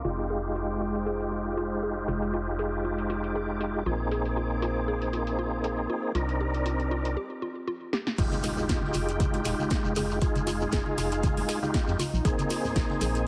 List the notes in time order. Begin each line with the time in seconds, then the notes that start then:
Already playing: C4 G5 C6 D6
0.05 F1 G#3 D#4 F4 G4 G5, closed hi-hat
0.19 C5, closed hi-hat
0.30 G#4
0.56 F4, closed hi-hat
0.81 F4
0.95 closed hi-hat
1.06 G#4, closed hi-hat
1.20 closed hi-hat
1.32 F4
1.57 F4, closed hi-hat
1.83 G#4
2.08 F1 F4, closed hi-hat
2.22 closed hi-hat
2.34 F4
2.59 G#4, closed hi-hat
2.85 F4
2.98 closed hi-hat
3.10 F4, closed hi-hat
3.24 closed hi-hat
3.35 G#4
3.61 F4, closed hi-hat
3.86 A#1 A#3 C4 D#4 F4 G#4 A#4 C5
3.99 F5
4.11 G#4, closed hi-hat
4.25 closed hi-hat
4.37 F4
4.57 C6
4.62 F4, closed hi-hat
4.88 G#4
5.02 closed hi-hat
5.13 F4, closed hi-hat
5.27 closed hi-hat
5.39 F4
5.64 G#4, closed hi-hat
5.90 F4
6.15 C2 C4 D4 D#4 F4 A#4 D5 A#5, closed hi-hat
6.29 G4, closed hi-hat
6.41 G4
6.54 closed hi-hat
6.66 F4, closed hi-hat
6.80 closed hi-hat
6.91 F4
7.05 closed hi-hat
7.17 G4
7.42 F4
7.68 F4
7.93 G4, snare
8.07 snare
8.18 F1 G#3 D#4 F4 G4 G5, kick, closed hi-hat, crash, impact, shekere
8.31 closed hi-hat, high conga, shekere
8.43 G#4, closed hi-hat, open hi-hat, shekere
8.57 snare, low conga, shekere
8.69 F1 F4, kick, snare, closed hi-hat, shekere
8.82 snare, high conga
8.94 F1 F4, closed hi-hat, open hi-hat, shekere
9.09 closed hi-hat, shekere
9.20 G#4, kick, closed hi-hat, high conga, shekere
9.34 closed hi-hat, low conga
9.45 D#1 F4, finger snap, closed hi-hat, open hi-hat, shekere
9.59 high conga, shekere
9.70 F4, kick, snare, closed hi-hat, shekere
9.85 F1, shekere
9.96 G#3 D#4 F4 G4 G#4, closed hi-hat, open hi-hat, high conga, shekere
10.10 snare, shekere
10.21 G#3 D#4 F4 G#4 F5, kick, closed hi-hat, shekere
10.35 F1, closed hi-hat, high conga, shekere
10.47 F4, closed hi-hat, open hi-hat, shekere
10.61 low conga, shekere
10.72 F1 G#4, kick, snare, closed hi-hat, shekere
10.86 high conga
10.98 F1 F4, closed hi-hat, open hi-hat, shekere
11.12 closed hi-hat, shekere
11.23 F4, kick, closed hi-hat, high conga, shekere
11.37 open hi-hat, low conga
11.48 G#4, finger snap, closed hi-hat, open hi-hat, shekere
11.62 G#3 D#4 F4 G4, closed hi-hat, high conga, shekere
11.74 F4, kick, snare, closed hi-hat, shekere
11.87 F2, snare, shekere
11.99 F4 C5 G#5, closed hi-hat, open hi-hat, high conga, shekere
12.14 A#1, shekere
12.25 A#1 A#3 C4 D#4 G#4, kick, closed hi-hat, shekere
12.39 closed hi-hat, high conga, shekere
12.50 F4, closed hi-hat, open hi-hat, shekere
12.64 snare, low conga, shekere
12.76 A#1 F4, kick, snare, closed hi-hat, shekere
12.90 snare, high conga
13.01 A#1 G#4, closed hi-hat, open hi-hat, shekere
13.15 closed hi-hat, shekere